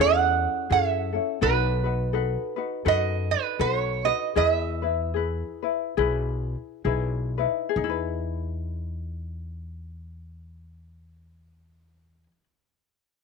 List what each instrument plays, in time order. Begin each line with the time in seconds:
Already playing: ukulele G#4
0.00 upright bass E2, ukulele C#4 E4 A4, resonator guitar played with a steel bar F#5
0.70 upright bass F#2, ukulele C#4 E4 G#4 A4, resonator guitar played with a steel bar E5
1.13 ukulele C#4 E4 A4
1.41 upright bass B1, ukulele D#4 F#4 A4 B4, resonator guitar played with a steel bar B4
1.84 ukulele D#4 F#4 B4
2.13 ukulele D#4 F#4 A4 B4
2.56 ukulele D#4 F#4 B4
2.85 upright bass F#2, ukulele D#4 F#4 A4 B4, resonator guitar played with a steel bar D#5
3.31 resonator guitar played with a steel bar B4
3.59 upright bass B1, ukulele D#4 F#4 A4 B4, resonator guitar played with a steel bar C5
3.79 resonator guitar played with a steel bar C#5
4.05 ukulele D#4 F#4 B4, resonator guitar played with a steel bar D#5
4.35 upright bass E2, ukulele E4 G#4 B4, resonator guitar played with a steel bar D#5
4.49 resonator guitar played with a steel bar E5
4.82 ukulele E4 B4
5.14 ukulele E4 G#4 B4
5.62 ukulele E4 B4
5.97 upright bass B1, ukulele E4 G#4 B4
6.84 upright bass B1, ukulele D#4 E4 G#4 B4
7.38 ukulele D#4 E4 B4
7.69 ukulele G#4
7.76 upright bass E2, ukulele D#4
7.84 ukulele E4
7.90 ukulele B4